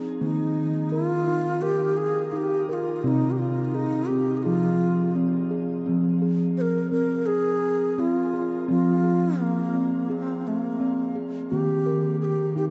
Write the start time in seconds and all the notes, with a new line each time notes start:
Already playing: F3 G#4
0.21 D#3 A#3 D#4
0.90 F4 A#4
1.27 D#4
1.62 G4 A#4
1.97 G#4
2.32 D#4 G#4
2.36 G4
2.69 G4 A#4
2.73 F4
2.96 F4
3.03 C3 C4 F4
3.07 D#4
3.31 G4
3.38 F4
3.65 F4
3.71 D#4 F4 G#4
4.08 C4 G4
4.37 G#4
4.43 F3 F4 G#4
5.15 C4
5.51 G#4
5.86 F3 C4
6.22 G#4
6.57 A#4 C5
6.92 C4 A#4
7.26 G#4
7.98 C4 F4
8.34 G#4
8.68 F3 C4 F4
9.04 G#4
9.40 A#3
9.73 C4
10.10 C4 G#4
10.47 A3
10.61 A#3
10.80 C4
11.15 G#4
11.50 D#3 A#3 G4
11.86 A#4
12.21 G4 G#4
12.56 D#4 G4